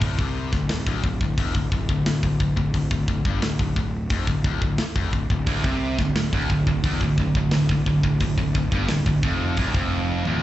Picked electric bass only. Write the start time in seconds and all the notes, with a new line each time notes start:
0.02 D1
0.19 C2
0.52 D1
0.72 D1
0.86 D1
1.03 D1
1.21 D1
1.38 E1
1.55 D1
1.72 D1
1.89 D1
2.06 D1
2.23 D1
2.40 D1
2.57 D1
2.74 D1
2.91 D1
3.08 D1
3.25 G1
3.43 D1
3.59 D1
3.76 D1
4.10 F1
4.27 D1
4.45 D1
4.62 D1
4.80 muted picked electric bass stroke
4.96 F1
5.13 D1
5.30 D1
5.47 D1
5.64 C2
5.99 D1
6.16 D1
6.33 D1
6.50 D1
6.67 D1
6.84 E1
7.01 D1
7.17 D1
7.35 D1
7.51 D1
7.69 D1
7.86 D1
8.03 D1
8.21 D1
8.38 D1
8.55 D1
8.72 G1
8.90 D1
9.06 D1
9.23 F1
9.57 D1
9.75 F1
10.27 D1